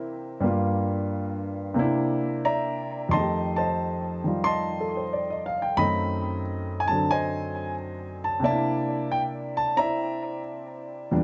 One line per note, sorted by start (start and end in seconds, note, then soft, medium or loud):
0.00 0.41 C3 medium
0.00 0.47 E3 medium
0.00 0.42 A#3 soft
0.00 0.42 C4 soft
0.00 0.45 D4 soft
0.00 0.43 E4 soft
0.00 0.40 A#4 medium
0.00 0.40 E5 medium
0.40 1.76 G2 soft
0.40 1.76 G3 soft
0.40 1.74 A#3 soft
0.45 1.78 F4 medium
1.74 3.12 C3 medium
1.74 3.13 A#3 medium
1.74 3.14 D4 medium
1.79 3.15 E4 medium
2.45 3.10 D5 medium
2.45 3.10 E5 medium
2.45 3.10 A#5 medium
3.09 5.78 F2 soft
3.09 3.55 A5 medium
3.09 3.55 C6 medium
3.13 4.23 D#3 soft
3.13 5.79 A3 soft
3.13 3.56 D#5 medium
3.20 5.84 G4 medium
3.56 4.88 C5 medium
3.56 4.45 D#5 medium
3.56 4.20 A5 medium
4.24 5.77 D#3 soft
4.24 5.81 G3 soft
4.24 5.82 F4 soft
4.44 5.29 D#5 medium
4.44 5.76 A5 medium
4.44 5.53 C6 medium
4.81 5.02 A4 soft
4.97 5.21 C5 soft
5.13 5.45 D5 soft
5.30 5.59 D#5 soft
5.46 5.67 F5 medium
5.62 5.86 G5 medium
5.77 8.43 F#2 soft
5.77 8.44 D#3 soft
5.77 8.45 A3 soft
5.77 7.08 D#5 medium
5.77 6.41 B5 loud
5.81 6.89 C4 soft
6.80 6.90 G#5 medium
6.88 8.44 F#3 soft
6.88 8.45 C4 soft
6.88 7.12 A5 medium
6.92 8.46 D3 soft
7.11 8.41 C5 medium
7.11 8.41 D#5 medium
7.11 7.74 G#5 medium
8.24 8.44 A5 medium
8.40 11.09 C3 medium
8.40 11.11 A#3 soft
8.44 11.11 D4 soft
8.44 9.74 D5 medium
8.44 9.74 E5 medium
8.44 9.14 A5 medium
8.50 9.79 E4 medium
9.12 9.22 G5 medium
9.57 9.77 A5 medium
9.77 11.11 C4 soft
9.77 11.13 E4 soft
9.77 11.08 D5 medium
9.77 11.08 E5 medium
9.77 10.40 A#5 medium
11.11 11.24 E2 medium
11.11 11.24 A#2 soft
11.11 11.24 G3 soft
11.11 11.24 D4 medium